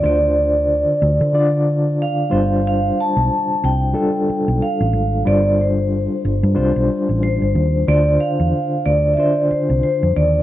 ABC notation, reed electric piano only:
X:1
M:4/4
L:1/8
Q:"Swing 16ths" 1/4=92
K:Dm
V:1 name="Reed electric piano"
[D,DFc]3 z [D,DFd]3 [G,DFc]- | [G,DFc]2 z2 [G,DFA]3 z | [G,DFc]3 z [G,DFc]3 z | [D,DFc]3 z [D,DFc]3 z |]